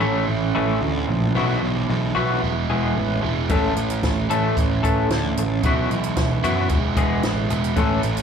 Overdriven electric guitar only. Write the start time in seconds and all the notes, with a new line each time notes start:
0.01 A2 E3 A3 C#4 E4
1.35 B2 E3 F#3 B3 E4
2.16 B2 E3 F#3 B3 E4
2.42 E3 G#3 B3 E4
3.22 E3 G#3 B3 E4
3.49 A2 E3 A3 C#4 E4
4.29 A2 E3 A3 C#4 E4
5.62 B2 E3 F#3 B3 E4
6.43 B2 E3 F#3 B3 E4
6.70 E3 G#3 B3 E4
7.49 E3 G#3 B3 E4
7.76 A2 E3 A3 C#4 E4